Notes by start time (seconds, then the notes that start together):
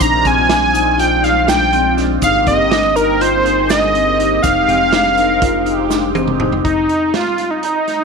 0.00 A#1 G#3 C4 D4 F4 A#5, kick, closed hi-hat, shaker
0.25 A#1 C4 G#5, kick, closed hi-hat, shaker
0.49 D4, snare, closed hi-hat
0.62 G#3 C4 D4 F4
0.73 D#4, closed hi-hat, shaker
0.97 F4 G5, closed hi-hat
1.11 G#3 C4 D4 F4
1.23 D#4 F5, snare, closed hi-hat
1.47 D4 G5, snare, closed hi-hat, shaker
1.73 G#3 C4 D4 F4, closed hi-hat
1.97 D4, snare, closed hi-hat
2.21 G#1 A#3 C4 D#4 G4 F5, kick, closed hi-hat, shaker
2.47 G1 C4 D#5, kick, closed hi-hat, shaker
2.71 D4, snare, closed hi-hat
2.85 A#3 C4 D#4 G4
2.96 D#4 A#4, closed hi-hat, shaker
3.20 F4 C5, closed hi-hat
3.34 A#3 C4 D#4 G#4
3.45 D#4, closed hi-hat
3.68 D4 D#5, snare, closed hi-hat, shaker
3.94 A#3 C4 D#4 G4, closed hi-hat
4.18 D#4, closed hi-hat
4.43 F1 G#3 C4 D#4 G4 F5, kick, closed hi-hat, shaker
4.68 F1 C4, closed hi-hat
4.92 D4, snare, closed hi-hat
5.05 G#3 C4 D#4 A#4
5.17 D#4, closed hi-hat
5.41 F4, kick, closed hi-hat
5.55 G#3 C4 D#4 G4
5.66 D#4, closed hi-hat
5.90 D4, snare, shaker
6.15 G#3 C4 D#4 G4, high tom, shaker
6.28 mid tom
6.40 D#4, mid tom
6.52 floor tom
6.64 F1 D#4, kick, closed hi-hat
6.89 closed hi-hat
7.14 F4, snare, closed hi-hat
7.38 snare, closed hi-hat
7.50 D#4
7.63 D#4, closed hi-hat
7.88 snare, closed hi-hat